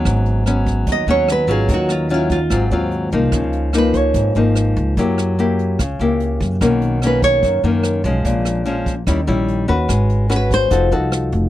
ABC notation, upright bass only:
X:1
M:4/4
L:1/8
Q:1/4=146
K:G#dor
V:1 name="Upright bass" clef=bass
G,,,4 D,, D,,2 G,,, | D,,4 G,,, D,,2 ^B,,, | C,,4 G,,, G,,,2 C,, | F,,4 C,, C,,2 F,, |
B,,,4 F,, F,,2 B,,, | A,,,4 D,, A,,,2 D,, | G,,,4 =F,,, =C,,2 F,,, |]